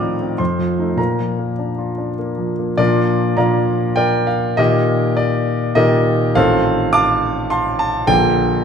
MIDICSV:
0, 0, Header, 1, 2, 480
1, 0, Start_track
1, 0, Key_signature, -2, "major"
1, 0, Tempo, 575816
1, 814, Time_signature, 3, 2, 24, 8
1, 814, Tempo, 598802
1, 5134, Tempo, 576369
1, 7031, End_track
2, 0, Start_track
2, 0, Title_t, "Grand piano"
2, 0, Program_c, 0, 0
2, 0, Control_c, 0, 64, 127
2, 0, Note_on_c, 0, 45, 57
2, 0, Note_on_c, 0, 51, 39
2, 0, Note_on_c, 0, 53, 34
2, 0, Note_on_c, 0, 60, 38
2, 0, Note_on_c, 0, 74, 53
2, 0, Note_on_c, 0, 75, 45
2, 0, Note_on_c, 0, 77, 65
2, 0, Note_on_c, 0, 86, 63
2, 0, Note_on_c, 0, 87, 65
2, 0, Note_on_c, 0, 89, 84
2, 22, Note_on_c, 0, 63, 37
2, 106, Note_off_c, 0, 60, 0
2, 178, Note_on_c, 0, 60, 34
2, 268, Note_off_c, 0, 63, 0
2, 292, Note_off_c, 0, 74, 0
2, 301, Note_off_c, 0, 45, 0
2, 318, Note_off_c, 0, 86, 0
2, 319, Note_on_c, 0, 84, 66
2, 327, Note_on_c, 0, 41, 45
2, 328, Note_on_c, 0, 72, 49
2, 331, Note_off_c, 0, 60, 0
2, 344, Control_c, 0, 64, 0
2, 346, Note_off_c, 0, 53, 0
2, 346, Note_off_c, 0, 77, 0
2, 348, Note_off_c, 0, 75, 0
2, 348, Note_off_c, 0, 89, 0
2, 349, Note_off_c, 0, 51, 0
2, 351, Note_off_c, 0, 87, 0
2, 479, Control_c, 0, 64, 127
2, 490, Note_on_c, 0, 53, 34
2, 654, Note_on_c, 0, 57, 32
2, 659, Note_on_c, 0, 63, 34
2, 750, Note_off_c, 0, 53, 0
2, 781, Note_off_c, 0, 72, 0
2, 797, Note_on_c, 0, 46, 42
2, 800, Note_off_c, 0, 41, 0
2, 801, Note_off_c, 0, 57, 0
2, 803, Note_off_c, 0, 63, 0
2, 810, Note_off_c, 0, 84, 0
2, 814, Note_on_c, 0, 82, 57
2, 825, Note_on_c, 0, 70, 45
2, 832, Control_c, 0, 64, 0
2, 969, Control_c, 0, 64, 127
2, 991, Note_on_c, 0, 53, 30
2, 1146, Note_on_c, 0, 58, 30
2, 1240, Note_off_c, 0, 53, 0
2, 1304, Note_on_c, 0, 62, 30
2, 1398, Note_off_c, 0, 58, 0
2, 1459, Note_on_c, 0, 65, 36
2, 1557, Note_off_c, 0, 62, 0
2, 1618, Note_on_c, 0, 62, 32
2, 1715, Note_off_c, 0, 65, 0
2, 1751, Note_off_c, 0, 70, 0
2, 1777, Note_off_c, 0, 82, 0
2, 1784, Note_on_c, 0, 58, 36
2, 1874, Note_off_c, 0, 62, 0
2, 1938, Note_on_c, 0, 53, 31
2, 2039, Note_off_c, 0, 58, 0
2, 2108, Note_on_c, 0, 58, 32
2, 2200, Note_off_c, 0, 53, 0
2, 2226, Note_off_c, 0, 46, 0
2, 2249, Note_off_c, 0, 58, 0
2, 2256, Note_on_c, 0, 74, 84
2, 2258, Note_on_c, 0, 46, 57
2, 2260, Note_on_c, 0, 53, 46
2, 2261, Note_on_c, 0, 58, 47
2, 2265, Note_on_c, 0, 70, 59
2, 2267, Note_on_c, 0, 62, 46
2, 2267, Note_on_c, 0, 65, 60
2, 2282, Control_c, 0, 64, 0
2, 2427, Control_c, 0, 64, 127
2, 2715, Note_off_c, 0, 70, 0
2, 2716, Note_off_c, 0, 65, 0
2, 2718, Note_off_c, 0, 53, 0
2, 2719, Note_off_c, 0, 46, 0
2, 2725, Note_off_c, 0, 58, 0
2, 2726, Note_off_c, 0, 74, 0
2, 2728, Note_off_c, 0, 62, 0
2, 2730, Note_on_c, 0, 53, 42
2, 2730, Note_on_c, 0, 82, 73
2, 2731, Note_on_c, 0, 46, 54
2, 2737, Note_on_c, 0, 58, 43
2, 2738, Note_on_c, 0, 74, 59
2, 2740, Note_on_c, 0, 62, 38
2, 2743, Note_on_c, 0, 77, 58
2, 3182, Note_off_c, 0, 74, 0
2, 3184, Note_off_c, 0, 77, 0
2, 3203, Note_on_c, 0, 79, 89
2, 3209, Note_off_c, 0, 82, 0
2, 3214, Note_on_c, 0, 70, 65
2, 3215, Note_on_c, 0, 74, 66
2, 3442, Note_off_c, 0, 70, 0
2, 3443, Note_off_c, 0, 74, 0
2, 3453, Note_on_c, 0, 77, 64
2, 3454, Note_off_c, 0, 79, 0
2, 3666, Note_off_c, 0, 46, 0
2, 3666, Note_off_c, 0, 53, 0
2, 3669, Note_off_c, 0, 58, 0
2, 3671, Note_off_c, 0, 62, 0
2, 3696, Note_on_c, 0, 75, 84
2, 3699, Note_off_c, 0, 77, 0
2, 3701, Note_on_c, 0, 46, 59
2, 3702, Note_on_c, 0, 51, 50
2, 3704, Note_on_c, 0, 58, 51
2, 3707, Note_on_c, 0, 67, 65
2, 3709, Note_on_c, 0, 70, 68
2, 3721, Control_c, 0, 64, 0
2, 3849, Control_c, 0, 64, 127
2, 4152, Note_off_c, 0, 67, 0
2, 4153, Note_off_c, 0, 70, 0
2, 4172, Note_on_c, 0, 74, 74
2, 4178, Note_off_c, 0, 75, 0
2, 4625, Note_off_c, 0, 46, 0
2, 4626, Note_off_c, 0, 51, 0
2, 4627, Note_off_c, 0, 58, 0
2, 4642, Note_on_c, 0, 75, 86
2, 4643, Note_on_c, 0, 46, 53
2, 4647, Note_on_c, 0, 51, 49
2, 4650, Note_off_c, 0, 74, 0
2, 4653, Note_on_c, 0, 70, 65
2, 4654, Note_on_c, 0, 58, 47
2, 4654, Note_on_c, 0, 67, 67
2, 5100, Note_off_c, 0, 67, 0
2, 5100, Note_off_c, 0, 70, 0
2, 5112, Note_off_c, 0, 46, 0
2, 5113, Note_off_c, 0, 51, 0
2, 5118, Note_off_c, 0, 58, 0
2, 5121, Note_on_c, 0, 33, 63
2, 5125, Note_on_c, 0, 51, 50
2, 5125, Note_on_c, 0, 77, 97
2, 5127, Note_off_c, 0, 75, 0
2, 5130, Note_on_c, 0, 60, 53
2, 5131, Note_on_c, 0, 65, 52
2, 5133, Note_on_c, 0, 69, 73
2, 5134, Note_on_c, 0, 72, 66
2, 5147, Control_c, 0, 64, 0
2, 5292, Control_c, 0, 64, 127
2, 5585, Note_off_c, 0, 69, 0
2, 5585, Note_off_c, 0, 72, 0
2, 5600, Note_off_c, 0, 77, 0
2, 5601, Note_on_c, 0, 86, 100
2, 5612, Note_on_c, 0, 81, 74
2, 5613, Note_on_c, 0, 77, 73
2, 6061, Note_off_c, 0, 81, 0
2, 6062, Note_off_c, 0, 77, 0
2, 6081, Note_on_c, 0, 84, 82
2, 6088, Note_on_c, 0, 77, 61
2, 6089, Note_off_c, 0, 86, 0
2, 6091, Note_on_c, 0, 81, 59
2, 6309, Note_off_c, 0, 81, 0
2, 6315, Note_off_c, 0, 77, 0
2, 6321, Note_on_c, 0, 81, 86
2, 6329, Note_off_c, 0, 84, 0
2, 6538, Note_off_c, 0, 33, 0
2, 6539, Note_off_c, 0, 51, 0
2, 6542, Note_off_c, 0, 60, 0
2, 6543, Note_off_c, 0, 65, 0
2, 6553, Note_on_c, 0, 34, 64
2, 6556, Note_on_c, 0, 79, 101
2, 6558, Note_on_c, 0, 50, 57
2, 6561, Note_on_c, 0, 58, 54
2, 6563, Note_on_c, 0, 65, 57
2, 6569, Note_off_c, 0, 81, 0
2, 6594, Control_c, 0, 64, 0
2, 6716, Control_c, 0, 64, 127
2, 7031, Note_off_c, 0, 34, 0
2, 7031, Note_off_c, 0, 50, 0
2, 7031, Note_off_c, 0, 58, 0
2, 7031, Note_off_c, 0, 65, 0
2, 7031, Note_off_c, 0, 79, 0
2, 7031, End_track
0, 0, End_of_file